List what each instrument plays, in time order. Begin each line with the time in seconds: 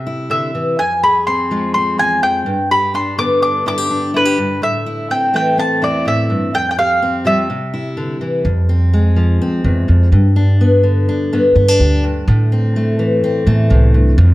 Already playing: steel-string acoustic guitar C3, mandolin E5
0.07 steel-string acoustic guitar E4
0.30 steel-string acoustic guitar D3, mandolin E5
0.55 steel-string acoustic guitar E3
0.79 steel-string acoustic guitar F2, mandolin G#5
1.03 steel-string acoustic guitar G#4, mandolin B5
1.27 steel-string acoustic guitar C4, mandolin C6
1.51 steel-string acoustic guitar F3 G#3
1.74 steel-string acoustic guitar C4, mandolin C6
1.98 steel-string acoustic guitar E2, mandolin G#5
2.23 steel-string acoustic guitar F2, mandolin G5
2.46 steel-string acoustic guitar G2
2.71 steel-string acoustic guitar G4, mandolin B5
2.94 steel-string acoustic guitar D4, mandolin C6
3.18 steel-string acoustic guitar D3 B3, mandolin D6
3.42 steel-string acoustic guitar D4, mandolin D6
3.66 steel-string acoustic guitar G2 E4, mandolin D6
3.78 steel-string acoustic guitar G4
3.90 steel-string acoustic guitar D4
4.14 steel-string acoustic guitar E4, mandolin B4
4.25 steel-string acoustic guitar G4
4.38 steel-string acoustic guitar G2
4.62 steel-string acoustic guitar A2, mandolin E5
4.86 steel-string acoustic guitar E4
5.11 steel-string acoustic guitar C4, mandolin G5
5.33 steel-string acoustic guitar E3 A3, mandolin G5
5.58 steel-string acoustic guitar C4, mandolin A5
5.82 steel-string acoustic guitar E2 E4, mandolin D5
6.05 steel-string acoustic guitar A2, mandolin E5
6.30 steel-string acoustic guitar G2
6.54 steel-string acoustic guitar F2, mandolin G5
6.71 mandolin G5
6.78 steel-string acoustic guitar G4, mandolin F5
7.02 steel-string acoustic guitar C4
7.25 steel-string acoustic guitar F3 G3, mandolin E5
7.50 steel-string acoustic guitar C3
7.74 steel-string acoustic guitar E4
7.97 steel-string acoustic guitar D3
8.21 steel-string acoustic guitar E3
8.45 upright bass F2, steel-string acoustic guitar F2
8.69 steel-string acoustic guitar C4
8.93 steel-string acoustic guitar G#3
9.16 steel-string acoustic guitar F3
9.41 steel-string acoustic guitar C4
9.64 steel-string acoustic guitar E2, upright bass F2
9.88 steel-string acoustic guitar F2, upright bass F2
10.12 upright bass G2, steel-string acoustic guitar G2
10.36 steel-string acoustic guitar D4
10.61 steel-string acoustic guitar B3
10.83 steel-string acoustic guitar D3
11.09 steel-string acoustic guitar D4
11.33 steel-string acoustic guitar G2 B3
11.56 upright bass G2, steel-string acoustic guitar B3
11.68 steel-string acoustic guitar D4
11.80 upright bass D2, steel-string acoustic guitar G4
12.04 steel-string acoustic guitar G2
12.28 upright bass A2, steel-string acoustic guitar A2
12.52 steel-string acoustic guitar C4
12.76 steel-string acoustic guitar A3
12.99 steel-string acoustic guitar E3
13.24 steel-string acoustic guitar C4
13.46 steel-string acoustic guitar E2 A3, upright bass A2
13.70 upright bass C2, steel-string acoustic guitar A2
13.94 steel-string acoustic guitar G2
14.18 steel-string acoustic guitar F2, upright bass F2